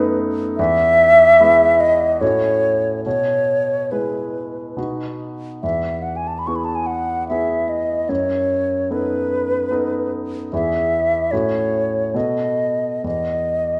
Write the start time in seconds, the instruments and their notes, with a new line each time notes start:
Already playing: grand piano F#2 A3 B3 D#4, flute B4
0.57 grand piano E2, flute E5
1.40 grand piano G#3 B3 E4
1.80 flute D#5
2.21 grand piano A2 A3 C#4 F#4, flute C#5
3.05 grand piano B2, flute C#5
3.91 grand piano G#3 E4 G#4, flute B4
4.77 grand piano B2 B3 D#4 F#4
5.63 grand piano E2, flute E5
6.02 flute F#5
6.16 flute G#5
6.28 flute A5
6.39 flute B5
6.47 grand piano B3 E4 G#4, flute C#6
6.56 flute B5
6.65 flute A5
6.75 flute G#5
6.86 flute F#5
7.29 grand piano B3 E4 G#4, flute E5
7.69 flute D#5
8.09 grand piano F#2, flute C#5
8.91 grand piano B3 D#4 A4, flute B4
9.71 grand piano B3 D#4 A4
10.53 grand piano E2 B3 E4 G#4, flute E5
11.31 grand piano A2 C#4 F#4 A4, flute C#5
12.14 grand piano B2 B3 F#4 A4, flute D#5
13.04 grand piano E2, flute D#5